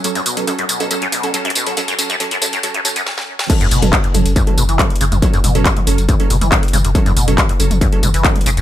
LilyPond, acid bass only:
\new Staff \with { instrumentName = "Acid bass" } { \clef bass \time 4/4 \key fis \minor \tempo 4 = 139 fis,16 fis,16 b,8 fis,16 fis,16 b,8 fis,16 fis,16 b,8 fis,16 fis,16 b,8 | fis,16 fis,16 fis,16 fis,16 fis,16 fis,16 fis,16 fis,16 fis,16 fis,16 fis,16 fis,16 r4 | fis,16 fis,16 b,8 fis,16 fis,16 r8 fis,16 r16 b,16 e16 fis,16 r16 cis16 fis,16 | fis,16 fis,16 b,8 fis,16 fis,16 r8 fis,16 r16 b,16 e16 fis,16 r16 cis16 fis,16 |
fis,16 fis,16 b,8 fis,16 fis,16 r8 fis,16 r16 b,16 e16 fis,16 r16 cis16 fis,16 | }